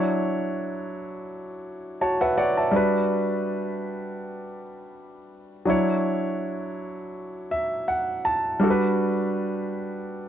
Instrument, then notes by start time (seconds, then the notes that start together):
grand piano
Already playing: F#3 D4 E4 C#5
2.01 F#4 C#5 A5
2.21 B4 E5 F#5
2.38 C#5 D5 F#5
2.57 E5 A5
2.71 G3 D4 F#4
2.76 B4
5.65 F#3 D4 E4
5.70 C#5
7.51 E5
7.88 F#5
8.25 A5
8.60 G3 D4 F#4
8.64 A4
8.70 B4